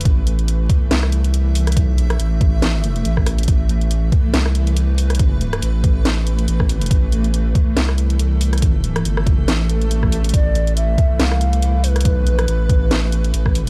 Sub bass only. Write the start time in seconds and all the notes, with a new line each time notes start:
0.05 A1
0.91 C2
1.80 B1
2.06 A#1
2.20 A1
3.05 A1
3.48 A1
4.34 C2
5.62 A1
6.48 A1
6.91 A1
7.77 C2
9.05 G1
9.48 A1
10.34 A1
11.20 C2
12.09 B1
12.35 A#1
12.48 A1
13.34 A1